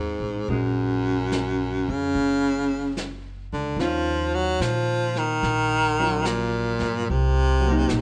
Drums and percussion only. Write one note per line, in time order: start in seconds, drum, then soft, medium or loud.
0.50 brush sweep soft
1.32 snare soft
1.32 hi-hat pedal soft
2.16 brush sweep soft
2.97 snare soft
2.97 hi-hat pedal soft
3.79 brush sweep soft
3.79 snare soft
4.61 snare soft
4.61 hi-hat pedal medium
5.15 snare soft
5.43 brush sweep soft
5.43 snare soft
6.25 snare soft
6.25 hi-hat pedal soft
6.79 snare soft
7.07 brush sweep soft
7.89 snare soft
7.89 hi-hat pedal medium